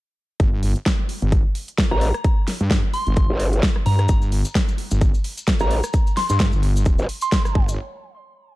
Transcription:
0.40 G1, kick, closed hi-hat
0.63 open hi-hat
0.76 closed hi-hat
0.86 kick, snare, closed hi-hat
1.09 open hi-hat
1.22 G1, closed hi-hat
1.32 kick, closed hi-hat
1.55 open hi-hat
1.68 closed hi-hat
1.78 kick, snare, closed hi-hat
1.91 A1 A#5, cross-stick
2.01 open hi-hat
2.14 cross-stick, closed hi-hat
2.24 kick, closed hi-hat
2.47 snare, open hi-hat
2.61 G2, closed hi-hat
2.71 kick, snare, closed hi-hat
2.94 C6, open hi-hat
3.07 G1, closed hi-hat
3.17 kick, closed hi-hat
3.30 G1
3.40 open hi-hat
3.53 closed hi-hat
3.63 kick, snare, closed hi-hat
3.76 cross-stick
3.86 G2 A#5, open hi-hat
3.99 A#5, cross-stick, closed hi-hat
4.08 G1, kick, closed hi-hat, cabasa
4.22 cabasa
4.32 open hi-hat
4.45 closed hi-hat, cabasa
4.55 kick, snare, closed hi-hat, cabasa
4.68 cabasa
4.78 open hi-hat
4.91 G1, closed hi-hat, cabasa
5.01 kick, closed hi-hat, cabasa
5.14 cabasa
5.24 open hi-hat
5.37 closed hi-hat, cabasa
5.47 kick, snare, closed hi-hat, cabasa
5.59 A1 A#5, cross-stick, cabasa
5.71 open hi-hat
5.83 cross-stick, closed hi-hat, cabasa
5.93 kick, closed hi-hat, cabasa
6.07 cabasa
6.17 C6, snare, open hi-hat
6.29 G2 C6, closed hi-hat, cabasa
6.39 kick, snare, closed hi-hat, cabasa
6.53 G1, cabasa
6.63 open hi-hat
6.76 closed hi-hat, cabasa
6.85 kick, closed hi-hat, cabasa
6.99 G1, cabasa
7.09 open hi-hat
7.21 C6, closed hi-hat, cabasa
7.32 kick, snare, closed hi-hat, cabasa
7.45 cross-stick, cabasa
7.55 G1, kick
7.69 cabasa

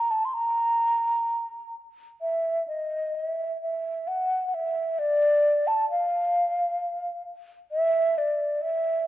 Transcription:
Already playing: A#5
0.11 A5
0.25 C6
0.33 A#5
2.21 E5
2.68 D#5
3.15 D#5
3.26 E5
3.62 E5
4.08 F#5
4.48 F#5
4.54 E5
4.99 D5
5.67 A5
5.90 F5
7.72 E5
8.18 D5
8.62 E5

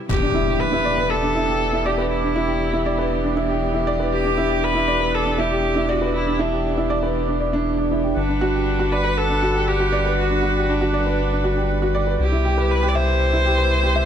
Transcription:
0.09 E1 E3 B3 D4 G4, impact
0.22 D4
0.34 E4
0.47 G4
0.60 B4
0.72 E4
0.85 D5
0.98 B4
1.10 A4
1.23 D4
1.35 E4
1.48 G4
1.73 E4
1.86 G4 D5
1.98 B4
2.11 E4
2.23 D4
2.36 E4
2.48 G4
2.73 E4
2.86 D5
2.98 B4
3.24 D4
3.37 E4
3.49 G4
3.74 E4
3.87 D5
4.00 B4
4.13 G4
4.25 D4
4.38 E4
4.50 G4
4.63 B4
4.75 E4
4.88 D5
5.01 B4
5.14 A4
5.26 D4
5.38 E4 G4
5.51 G4
5.76 E4
5.89 F#4 D5
6.02 B4
6.15 E4
6.27 D4
6.39 D4 E4
6.52 G4
6.78 E4
6.90 D5
7.03 B4
7.28 D4
7.40 D5
7.53 D4
7.78 D4
7.91 E4
8.04 G4
8.16 G1 G3 D4 B4 F#5
8.29 D4
8.41 F#4
8.54 G4
8.79 F#4
8.92 B4 D5
9.04 B4
9.17 A4
9.30 D4
9.42 F#4
9.55 G4
9.68 G4
9.80 F#4
9.93 D5
10.06 B4
10.18 F#4
10.31 D4
10.43 F#4
10.56 G4
10.69 D4
10.81 F#4
10.94 D5
11.06 B4
11.31 D4
11.44 F#4
11.57 G4
11.82 F#4
11.95 D5
12.07 B4
12.20 C2 B2 C3 E4 G4
12.32 E4
12.45 G4
12.58 B4
12.71 B4
12.83 G4
12.88 D5
12.95 C5 E5
13.08 C5
13.33 E4
13.46 G4
13.58 B4
13.83 G4
13.96 E5

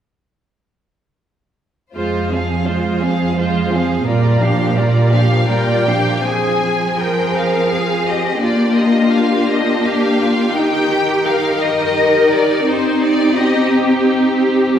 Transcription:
1.94 F2 G#3 F4 C5
2.31 F3 C4 G#4 F5
2.67 G#3 F4 C5
3.02 F3 C4 G#4 F5
3.38 G#3 F4 C5
3.73 F3 C4 G#4 F5
4.06 A#2 G3 F4 A#4 D5
4.41 F3 D4 G4 F5
4.76 G3 F4 A#4 D5
5.12 F3 D4 G4 F5
5.48 G3 F4 A#4 D5 G5
5.88 F3 D4 G4 F5
6.24 F3 C4 G#4 G#5
6.99 A#4 G5
7.35 F5
7.71 G#4
8.06 G4 D#5
8.41 A#3 D4 F4 G4 D5
8.76 D#5
9.11 F5
9.48 D#5
9.83 G4 F5
10.19 F4
10.54 D#3 D#4 G5
10.90 G4
11.26 A#4 F5
11.61 D#5
12.31 D5
12.66 C4 D#4 G4 C5
13.02 D5
13.37 G4 D#5
14.08 G4

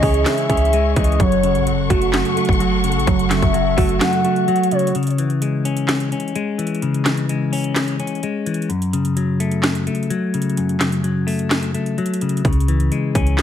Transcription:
Already playing: C#3 E3 G#3 C#4 E4 G#4 D#5 C#6
0.03 C#2 C#4 G#4, kick, open hi-hat
0.14 closed hi-hat
0.25 C#4 E5, snare, clap, closed hi-hat
0.38 closed hi-hat
0.49 C#2 C#4 G#4, kick, closed hi-hat
0.57 closed hi-hat
0.65 closed hi-hat
0.73 G#3, closed hi-hat
0.96 C#2 E3 D#5, kick, closed hi-hat
1.04 closed hi-hat
1.12 closed hi-hat
1.19 F#1 F#2 F#3 A4 C#5 F#5 C#6, kick, closed hi-hat
1.32 closed hi-hat
1.43 C#3, closed hi-hat
1.55 A1, closed hi-hat
1.67 F#3, closed hi-hat
1.73 F#1
1.90 F#1 A3 F#4, kick, closed hi-hat
2.02 closed hi-hat
2.13 F#3, snare, clap, closed hi-hat
2.25 closed hi-hat
2.37 A3 F#4, closed hi-hat
2.45 F#1, kick, closed hi-hat
2.53 closed hi-hat
2.60 F#3, closed hi-hat
2.84 C#3, closed hi-hat
2.92 A1, closed hi-hat
3.00 closed hi-hat
3.07 F#1 F#2 F#3, kick, closed hi-hat
3.19 closed hi-hat
3.30 C#3 E5, snare, clap, closed hi-hat
3.42 F#1, kick, closed hi-hat
3.54 F#3, closed hi-hat
3.77 F#1 A3 F#4, kick, open hi-hat
3.89 closed hi-hat
4.00 F#3 F#5, snare, clap, closed hi-hat
4.13 closed hi-hat
4.24 A3 F#4, closed hi-hat
4.36 closed hi-hat
4.48 F#3, closed hi-hat
4.56 closed hi-hat
4.64 closed hi-hat
4.71 C#3 C#5, closed hi-hat
4.79 closed hi-hat
4.87 closed hi-hat
4.95 C#3, closed hi-hat
5.03 closed hi-hat
5.07 closed hi-hat
5.10 closed hi-hat
5.18 E3, closed hi-hat
5.30 closed hi-hat
5.42 G#3, closed hi-hat
5.65 C#4, closed hi-hat
5.77 closed hi-hat
5.88 snare, clap, closed hi-hat
6.00 closed hi-hat
6.12 C#4, closed hi-hat
6.20 closed hi-hat
6.28 closed hi-hat
6.35 G#3, closed hi-hat
6.58 E3, closed hi-hat
6.67 closed hi-hat
6.75 closed hi-hat
6.82 C#3, closed hi-hat
6.94 closed hi-hat
7.05 E3, snare, clap, closed hi-hat
7.17 closed hi-hat
7.29 G#3, closed hi-hat
7.53 C#4, open hi-hat
7.64 closed hi-hat
7.75 snare, clap, closed hi-hat
7.88 closed hi-hat
8.00 C#4, closed hi-hat
8.07 closed hi-hat
8.15 closed hi-hat
8.23 G#3, closed hi-hat
8.46 E3, closed hi-hat
8.54 closed hi-hat
8.62 closed hi-hat
8.69 F#2, closed hi-hat
8.82 closed hi-hat
8.93 C#3, closed hi-hat
9.05 closed hi-hat
9.17 F#3, closed hi-hat
9.40 A3, closed hi-hat
9.51 closed hi-hat
9.63 snare, clap, closed hi-hat
9.75 closed hi-hat
9.87 A3, closed hi-hat
9.95 closed hi-hat
10.03 closed hi-hat
10.10 F#3, closed hi-hat
10.34 C#3, closed hi-hat
10.42 closed hi-hat
10.49 closed hi-hat
10.57 F#2, closed hi-hat
10.69 closed hi-hat
10.80 C#3, snare, clap, closed hi-hat
10.92 closed hi-hat
11.04 F#3, closed hi-hat
11.27 A3, open hi-hat
11.39 closed hi-hat
11.50 snare, clap, closed hi-hat
11.63 closed hi-hat
11.74 A3, closed hi-hat
11.86 closed hi-hat
11.98 F#3, closed hi-hat
12.06 closed hi-hat
12.14 closed hi-hat
12.21 C#3, closed hi-hat
12.29 closed hi-hat
12.37 closed hi-hat
12.45 C#2 C#3, kick, closed hi-hat
12.53 closed hi-hat
12.60 closed hi-hat
12.68 E3, closed hi-hat
12.80 closed hi-hat
12.92 G#3, closed hi-hat
13.15 C#2 C#4, kick, closed hi-hat
13.27 closed hi-hat
13.38 snare, clap, closed hi-hat

